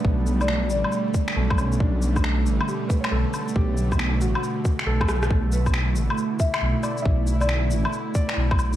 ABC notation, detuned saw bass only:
X:1
M:4/4
L:1/16
Q:"Swing 16ths" 1/4=137
K:Bm
V:1 name="Detuned saw bass" clef=bass
B,,,6 A,,, z4 z B,,,4 | B,,,6 A,,, z4 z B,,, z3 | B,,,6 A,,, z4 z B,,,4 | B,,,6 A,,, z4 z B,,, z3 |
B,,,6 A,,, z4 z B,,,4 |]